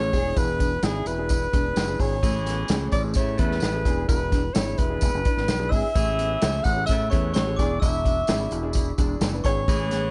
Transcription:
Already playing: saxophone section C#3 A3 E4, alto saxophone C#5
0.00 upright piano A3 C#4 G#4
0.13 fingered electric bass E1, upright piano D4 E4 G#4, clean electric guitar G#4, kick, open hi-hat, tambourine
0.36 fingered electric bass E1, clean electric guitar E4, alto saxophone B4, kick, closed hi-hat, tambourine
0.60 clean electric guitar D4, kick, closed hi-hat, tambourine
0.82 fingered electric bass G#1, upright piano D4 E4 G#4, clean electric guitar E4, alto saxophone G#4, snare, closed hi-hat, tambourine
1.06 fingered electric bass E1, alto saxophone B4, closed hi-hat, tambourine
1.18 upright piano D4 E4 G#4
1.29 clean electric guitar E4, kick, closed hi-hat, tambourine
1.53 fingered electric bass E1, clean electric guitar D4, upright piano D4 E4 G#4, kick, closed hi-hat, tambourine
1.76 fingered electric bass F#1, snare, closed hi-hat, tambourine
1.87 upright piano D4 E4 G#4
2.00 fingered electric bass G#1, clean electric guitar G#4, alto saxophone C#5, kick, open hi-hat, tambourine
2.22 fingered electric bass A1, saxophone section E3 C#4 G#4, clean electric guitar A3, upright piano A3 C#4 G#4, kick, closed hi-hat, tambourine
2.46 clean electric guitar B3, snare, closed hi-hat, tambourine
2.68 fingered electric bass C#2, upright piano A3 C#4 G#4, clean electric guitar C#4, snare, closed hi-hat, tambourine
2.92 fingered electric bass A1, alto saxophone D5, kick, closed hi-hat, tambourine
3.04 upright piano A3 C#4 G#4
3.14 fingered electric bass A2, saxophone section C#3 A3 E4, clean electric guitar C#4, alto saxophone C#5, kick, closed hi-hat, tambourine
3.37 fingered electric bass E2, saxophone section C#3 A3 E4, upright piano A3 C#4 G#4, clean electric guitar B3, alto saxophone B4, kick, closed hi-hat, tambourine
3.51 snare
3.60 fingered electric bass A1, snare, closed hi-hat, tambourine
3.73 upright piano A3 C#4 G#4
3.85 fingered electric bass E1, upright piano D4 E4 G#4, clean electric guitar G#4, kick, closed hi-hat, tambourine
4.08 fingered electric bass E1, clean electric guitar E4, alto saxophone B4, kick, closed hi-hat, tambourine
4.32 clean electric guitar D4, kick, snare, closed hi-hat, tambourine
4.54 fingered electric bass G#1, upright piano D4 E4 G#4, clean electric guitar E4, alto saxophone C#5, snare, closed hi-hat, tambourine
4.78 fingered electric bass E1, alto saxophone B4, kick, closed hi-hat, tambourine
4.89 upright piano D4 E4 G#4
5.01 fingered electric bass E1, clean electric guitar E4, kick, closed hi-hat, tambourine
5.15 fingered electric bass F#1
5.25 upright piano D4 E4 B4, clean electric guitar D4, kick, closed hi-hat, tambourine
5.37 fingered electric bass G#1, snare
5.48 fingered electric bass B1, snare, closed hi-hat, tambourine
5.59 upright piano D4 E4 G#4
5.69 fingered electric bass G#1, alto saxophone E5, glockenspiel E6, kick, open hi-hat, tambourine
5.74 clean electric guitar G#4
5.94 fingered electric bass A1, saxophone section E3 C#4 G#4, upright piano A3 C#4 G#4, clean electric guitar A3, kick, closed hi-hat, tambourine
6.19 clean electric guitar B3, closed hi-hat, tambourine
6.41 fingered electric bass C#2, upright piano A3 C#4 G#4, clean electric guitar C#4, snare, closed hi-hat, tambourine
6.64 fingered electric bass A1, alto saxophone F#5, glockenspiel F#6, kick, closed hi-hat, tambourine
6.76 upright piano A3 C#4 G#4
6.86 fingered electric bass A2, alto saxophone E5, glockenspiel E6, kick, closed hi-hat, tambourine
6.90 saxophone section C#3 A3 E4, clean electric guitar C#4
7.10 fingered electric bass E2, saxophone section C#3 A3 E4, upright piano A3 C#4 G#4, clean electric guitar B3, alto saxophone C#5, glockenspiel C#6, kick, closed hi-hat, tambourine
7.34 fingered electric bass A1, alto saxophone C#5, glockenspiel C#6, snare, closed hi-hat, tambourine
7.47 upright piano A3 C#4 G#4
7.56 fingered electric bass E1, upright piano D4 E4 G#4, clean electric guitar G#4, alto saxophone D5, glockenspiel D6, kick, closed hi-hat, tambourine
7.80 fingered electric bass E1, clean electric guitar E4, alto saxophone E5, glockenspiel E6, kick, closed hi-hat, tambourine
8.05 clean electric guitar D4, kick, closed hi-hat, tambourine
8.27 fingered electric bass G#1, upright piano D4 E4 G#4, clean electric guitar E4, snare, closed hi-hat, tambourine
8.51 fingered electric bass E1, closed hi-hat, tambourine
8.63 upright piano D4 E4 G#4
8.73 clean electric guitar E4, kick, closed hi-hat, tambourine
8.98 fingered electric bass E1, clean electric guitar D4, upright piano D4 E4 G#4, kick, closed hi-hat, tambourine
9.21 fingered electric bass F#1, snare, closed hi-hat, tambourine
9.33 upright piano D4 E4 B4
9.44 fingered electric bass G#1, clean electric guitar G#4, alto saxophone C#5, glockenspiel C#6, kick, closed hi-hat, tambourine
9.67 fingered electric bass A1, saxophone section E3 C#4 G#4, clean electric guitar A3, upright piano A3 C#4 G#4, kick, closed hi-hat, tambourine
9.91 clean electric guitar B3, snare, closed hi-hat, tambourine

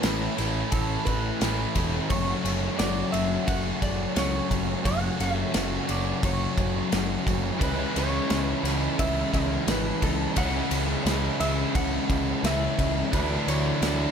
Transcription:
Already playing: overdriven electric guitar A2, resonator guitar played with a steel bar B4
0.02 picked electric bass A1, distorted electric guitar A2 E3 A3, overdriven electric guitar E3 A3 C#4 E4, snare, ride
0.36 picked electric bass A1, distorted electric guitar E3 A3, overdriven electric guitar C#4 E4, snare, ride
0.41 overdriven electric guitar A3
0.71 picked electric bass A1, overdriven electric guitar A2 E3 A3 C#4 E4, resonator guitar played with a steel bar A4, kick, ride
1.05 picked electric bass A1, resonator guitar played with a steel bar B4, kick, ride
1.40 picked electric bass A1, distorted electric guitar A2 E3 A3, overdriven electric guitar E3 A3 C#4 E4, snare, ride
1.75 picked electric bass E1, distorted electric guitar E3 A3, kick, ride
2.08 picked electric bass F#1, overdriven electric guitar F#2 C#3 F#3 A3 C#4 F#4, distorted electric guitar F#2, resonator guitar played with a steel bar C#5, kick, ride
2.12 distorted electric guitar C#3 F#3
2.44 picked electric bass F#1, distorted electric guitar C#3 F#3, ride
2.76 picked electric bass F#1, distorted electric guitar F#2, overdriven electric guitar F#3 A3 C#4, resonator guitar played with a steel bar D5, snare, ride
2.80 distorted electric guitar C#3 F#3, overdriven electric guitar F#4
3.10 picked electric bass F#1, distorted electric guitar F#3, overdriven electric guitar F#3 A3 C#4 F#4, resonator guitar played with a steel bar E5, ride
3.15 distorted electric guitar C#3
3.45 picked electric bass F#1, overdriven electric guitar F#2 C#3 F#3 A3 C#4 F#4, resonator guitar played with a steel bar F#5, kick, ride
3.82 picked electric bass F#1, resonator guitar played with a steel bar D5, kick, ride
4.14 picked electric bass C#2, distorted electric guitar F#2 C#3 F#3, overdriven electric guitar F#3 A3 C#4 F#4, resonator guitar played with a steel bar C#5, snare, ride
4.48 picked electric bass F#1, distorted electric guitar C#3 F#3, kick, ride
4.82 picked electric bass F#1, distorted electric guitar F#2 C#3 F#3, overdriven electric guitar F#2 C#3 F#3, resonator guitar played with a steel bar F#5, kick, ride
4.86 overdriven electric guitar A3 C#4 F#4
5.17 picked electric bass F#1, distorted electric guitar C#3 F#3, resonator guitar played with a steel bar E5, ride
5.52 picked electric bass F#1, distorted electric guitar F#2 C#3 F#3, overdriven electric guitar F#3 A3 C#4 F#4, snare, ride
5.85 distorted electric guitar C#3 F#3, overdriven electric guitar C#4 F#4
5.89 picked electric bass F#1, overdriven electric guitar F#3 A3, resonator guitar played with a steel bar D5, ride
6.21 picked electric bass F#1, overdriven electric guitar F#2 C#3 F#3 A3 C#4 F#4, resonator guitar played with a steel bar C#5, kick, ride
6.58 picked electric bass F#1, kick, ride
6.89 picked electric bass F#1, distorted electric guitar F#2 C#3 F#3, overdriven electric guitar F#3 A3 C#4 F#4, snare, ride
7.24 picked electric bass F#1, distorted electric guitar C#3 F#3, kick, ride
7.58 picked electric bass C#2, overdriven electric guitar C#3 E3 G#3 C#4 E4, distorted electric guitar C#3 G#3, kick, ride
7.62 distorted electric guitar C#4, resonator guitar played with a steel bar B4
7.94 picked electric bass C#2, distorted electric guitar G#3 C#4, resonator guitar played with a steel bar C#5, ride
8.27 picked electric bass C#2, distorted electric guitar C#3 G#3 C#4, overdriven electric guitar E3 G#3 C#4 E4, snare, ride
8.46 resonator guitar played with a steel bar B4
8.62 picked electric bass C#2, overdriven electric guitar G#3 C#4 E4, distorted electric guitar C#4, snare, ride
8.67 distorted electric guitar G#3
8.96 picked electric bass C#2, overdriven electric guitar C#3 E3 G#3 C#4 E4, resonator guitar played with a steel bar E5, kick, ride
9.33 picked electric bass C#2, resonator guitar played with a steel bar C#5, kick, ride
9.66 picked electric bass G#1, distorted electric guitar C#3 G#3 C#4, overdriven electric guitar E3 G#3 C#4 E4, resonator guitar played with a steel bar B4, snare, ride
10.01 picked electric bass C#2, distorted electric guitar G#3 C#4, resonator guitar played with a steel bar A4, kick, ride
10.35 picked electric bass C#2, overdriven electric guitar C#3 E3 G#3 C#4 E4, distorted electric guitar C#3 G#3, resonator guitar played with a steel bar F#5, kick, ride
10.39 distorted electric guitar C#4
10.71 picked electric bass C#2, distorted electric guitar G#3 C#4, ride
11.04 picked electric bass C#2, distorted electric guitar C#3 G#3, overdriven electric guitar E3 G#3 C#4 E4, snare, ride
11.10 distorted electric guitar C#4
11.38 picked electric bass C#2, overdriven electric guitar G#3 C#4 E4, distorted electric guitar C#4, resonator guitar played with a steel bar E5, ride
11.44 distorted electric guitar G#3
11.72 picked electric bass C#2, overdriven electric guitar C#3 E3 G#3 C#4 E4, resonator guitar played with a steel bar F#5, kick, ride
12.09 picked electric bass C#2, kick, ride
12.41 picked electric bass C#2, distorted electric guitar C#3 G#3, overdriven electric guitar E3 G#3 C#4 E4, snare, ride
12.46 distorted electric guitar C#4, resonator guitar played with a steel bar E5
12.77 picked electric bass C#2, distorted electric guitar G#3 C#4, kick, ride
13.10 picked electric bass D2, overdriven electric guitar D3 E3 A3 D4, distorted electric guitar D3 A3, resonator guitar played with a steel bar B4, kick, ride
13.15 distorted electric guitar D4, overdriven electric guitar E4
13.45 picked electric bass D2, distorted electric guitar A3 D4, resonator guitar played with a steel bar C#5, ride
13.80 picked electric bass D2, overdriven electric guitar D3 A3 D4 E4, distorted electric guitar D3 A3, snare, ride
13.85 distorted electric guitar D4

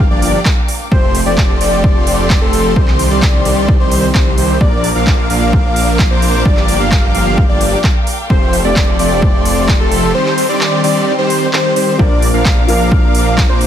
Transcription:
Already playing: string section A#4 F5 G5 D6, downlifter
0.11 detuned saw bass G1, supersaw synth F3 A#3 D4 G4 D5, analog synth lead D5
0.22 open hi-hat
0.45 kick, clap
0.68 open hi-hat
0.92 detuned saw bass F1, supersaw synth F3 A3 C4 G4 C5, string section A4 F5 G5 C6, analog synth lead C5, kick
1.15 open hi-hat
1.26 detuned saw bass F1, supersaw synth F3 A3 C4 G4 D5, analog synth lead D5
1.38 kick, clap
1.61 detuned saw bass F1, supersaw synth F3 A3 C4 G4 D5, analog synth lead D5, open hi-hat
1.84 kick
2.07 open hi-hat
2.30 kick, clap
2.42 detuned saw bass F1, supersaw synth F3 A3 C4 G4 A4, analog synth lead A4
2.53 open hi-hat
2.76 detuned saw bass C2, supersaw synth D#3 G3 C4 G4 C5, string section D#4 G4 C5, analog synth lead C5, kick
2.88 clap
2.99 open hi-hat
3.11 detuned saw bass C2, supersaw synth D#3 G3 C4 G4 D5, analog synth lead D5
3.22 kick, clap
3.45 detuned saw bass C2, supersaw synth D#3 G3 C4 G4 D5, analog synth lead D5, open hi-hat
3.68 kick
3.80 detuned saw bass C2, supersaw synth D#3 G3 C4 G4 C5, analog synth lead C5
3.92 open hi-hat
4.15 detuned saw bass C2, supersaw synth D#3 G3 C4 G4 C5, analog synth lead C5, kick, clap
4.38 detuned saw bass C2, supersaw synth D#3 G3 C4 G4 C5, analog synth lead C5, open hi-hat
4.61 detuned saw bass A#1, supersaw synth F3 A#3 D4 A#4 D5, string section A#4 D5 F5 D6, analog synth lead D5, kick
4.84 open hi-hat
4.95 detuned saw bass A#1, supersaw synth F3 A#3 D4 A#4 F5, analog synth lead F5
5.07 kick, clap
5.30 detuned saw bass A#1, supersaw synth F3 A#3 D4 A#4 F5, analog synth lead F5, open hi-hat
5.53 kick
5.76 open hi-hat
5.99 kick, clap
6.11 detuned saw bass A#1, supersaw synth F3 A#3 D4 A#4 C5, analog synth lead C5
6.22 open hi-hat
6.45 detuned saw bass G1, supersaw synth F3 A#3 D4 G4 D5, analog synth lead D5, string section G5, kick
6.57 clap
6.68 open hi-hat
6.80 detuned saw bass G1, supersaw synth F3 A#3 D4 G4 F5, analog synth lead F5
6.92 kick, clap
7.15 detuned saw bass G1, supersaw synth F3 A#3 D4 G4 F5, analog synth lead F5, open hi-hat
7.38 kick
7.49 detuned saw bass G1, supersaw synth F3 A#3 D4 G4 D5, analog synth lead D5
7.61 open hi-hat
7.84 kick, clap
8.07 open hi-hat
8.30 detuned saw bass F1, supersaw synth F3 A3 C4 G4 C5, string section A4 C6, analog synth lead C5, kick
8.53 open hi-hat
8.65 detuned saw bass F1, supersaw synth F3 A3 C4 G4 D5, analog synth lead D5
8.76 kick, clap
8.99 detuned saw bass F1, supersaw synth F3 A3 C4 G4 D5, analog synth lead D5, open hi-hat
9.22 kick
9.45 open hi-hat
9.69 kick, clap
9.80 detuned saw bass F1, supersaw synth F3 A3 C4 G4 A4, analog synth lead A4
9.92 open hi-hat
10.15 supersaw synth D#3 G3 C4 G4 C5, string section D#4 G4 C5, analog synth lead C5
10.26 clap
10.38 open hi-hat
10.49 supersaw synth D#3 G3 C4 G4 D5, analog synth lead D5
10.61 clap
10.84 supersaw synth D#3 G3 C4 G4 D5, analog synth lead D5, open hi-hat
11.19 supersaw synth D#3 G3 C4 G4 C5, analog synth lead C5
11.30 open hi-hat
11.53 supersaw synth D#3 G3 C4 G4 C5, analog synth lead C5, clap
11.76 supersaw synth D#3 G3 C4 G4 C5, analog synth lead C5, open hi-hat
11.98 detuned saw bass A#1, felt piano F3 A#3 D4 A#4, supersaw synth F3 A#3 D4 A#4 D5, string section A#4 D5 F5 D6, analog synth lead D5, kick
12.22 open hi-hat
12.34 detuned saw bass A#1, supersaw synth F3 A#3 D4 A#4 F5, analog synth lead F5
12.45 kick, clap
12.67 detuned saw bass A#1, felt piano F3 A#3 D4 A#4, supersaw synth F3 A#3 D4 A#4 F5, analog synth lead F5, open hi-hat
12.92 kick
13.15 open hi-hat
13.38 kick, clap
13.49 detuned saw bass A#1, supersaw synth F3 A#3 D4 A#4 C5, analog synth lead C5
13.61 open hi-hat

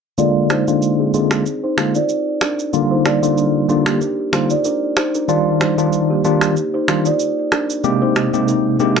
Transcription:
0.18 tine electric piano D3 G#3 A#3 F4, kalimba F4 D5, shaker
0.50 kalimba D#4 C5, finger snap, cross-stick, shaker
0.67 tine electric piano D3 G#3 A#3 F4, kalimba D4 A#4, shaker
0.82 shaker
1.00 kalimba C4 G#4
1.14 tine electric piano D3 G#3 A#3 F4, kalimba C4 G#4, shaker
1.31 finger snap, cross-stick, shaker
1.46 shaker
1.64 kalimba D#4 C5
1.77 tine electric piano D3 G#3 A#3 F4, finger snap, cross-stick, shaker
1.95 kalimba F4 D5, shaker
2.09 shaker
2.41 kalimba D4 A#4, finger snap, cross-stick, shaker
2.59 shaker
2.73 tine electric piano D3 G3 A#3 F4, shaker
2.91 kalimba D#4 C5
3.05 kalimba F4 D5, finger snap, cross-stick, shaker
3.22 tine electric piano D3 G3 A#3 F4, shaker
3.37 kalimba D4 A#4, shaker
3.69 tine electric piano D3 G3 A#3 F4, kalimba D4 A#4, shaker
3.86 kalimba A#3 G4, finger snap, cross-stick, shaker
4.01 kalimba D4 A#4, shaker
4.33 tine electric piano D3 G3 A#3 F4, kalimba D#4 C5, finger snap, cross-stick, shaker
4.50 kalimba F4 D5, shaker
4.64 kalimba D4 A#4, shaker
4.97 kalimba D#4 C5, finger snap, cross-stick, shaker
5.15 kalimba D4 A#4, shaker
5.28 tine electric piano D#3 G3 D4 F4, kalimba F4 D5, shaker
5.61 kalimba D#4 C5, finger snap, cross-stick, shaker
5.78 tine electric piano D#3 G3 D4 F4, kalimba D4 A#4, shaker
5.93 shaker
6.10 kalimba A#3 G4
6.24 tine electric piano D#3 G3 D4 F4, kalimba A#3 G4, shaker
6.41 finger snap, cross-stick, shaker
6.57 shaker
6.74 kalimba D#4 C5
6.88 tine electric piano D#3 G3 D4 F4, finger snap, cross-stick, shaker
7.05 kalimba F4 D5, shaker
7.19 shaker
7.52 kalimba D4 A#4, finger snap, cross-stick, shaker
7.70 shaker
7.84 tine electric piano C3 G#3 A#3 G4, shaker
8.02 kalimba D#4 C5
8.16 kalimba G4 D#5, finger snap, cross-stick, shaker
8.33 tine electric piano C3 G#3 A#3 G4, shaker
8.48 kalimba D#4 A#4, shaker
8.79 tine electric piano C3 G#3 A#3 G4, kalimba D4 A#4, shaker
8.96 finger snap, cross-stick

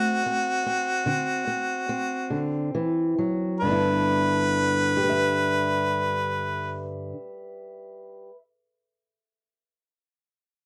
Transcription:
Already playing: steel-string acoustic guitar A3 C4, harmonica F#4
0.26 steel-string acoustic guitar C4
0.66 steel-string acoustic guitar C4
1.06 steel-string acoustic guitar D3 C4
1.47 steel-string acoustic guitar C4
1.89 steel-string acoustic guitar C4
2.30 steel-string acoustic guitar D3
2.75 steel-string acoustic guitar E3
3.18 steel-string acoustic guitar F#3
3.60 steel-string acoustic guitar G2, harmonica B4
3.65 steel-string acoustic guitar D3 B3
3.69 steel-string acoustic guitar D4 E4
4.97 steel-string acoustic guitar G4
5.03 steel-string acoustic guitar B4
5.09 steel-string acoustic guitar E5

